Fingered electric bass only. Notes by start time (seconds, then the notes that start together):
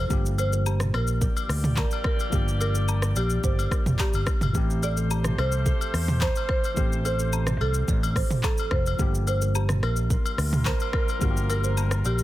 0.10 G1
0.94 A#1
1.49 D2
2.33 G1
3.16 A#1
3.44 G1
3.86 F1
4.14 G1
4.42 G1
4.55 A1
5.38 C2
5.94 E2
6.77 A1
7.60 C2
7.88 A1
8.72 F1
8.99 G1
9.83 A#1
10.38 D2
11.22 G1
12.05 A#1